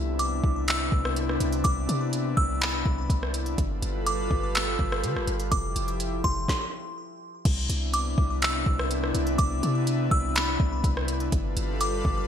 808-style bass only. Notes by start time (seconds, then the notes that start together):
Already playing: C2
0.44 C2
0.92 C2
1.40 C2
1.65 C2
1.89 C3
2.37 C2
2.86 C2
3.10 C2
3.58 G1
3.82 G1
4.31 G1
4.79 G1
5.03 D3
5.15 G1
5.27 G1
5.52 F1
5.76 F1
6.24 F1
7.45 C2
7.69 C2
8.18 C2
8.66 C2
9.15 C2
9.39 C2
9.63 C3
10.11 C2
10.60 C2
10.84 C2
11.32 G1
11.57 G1
12.05 G1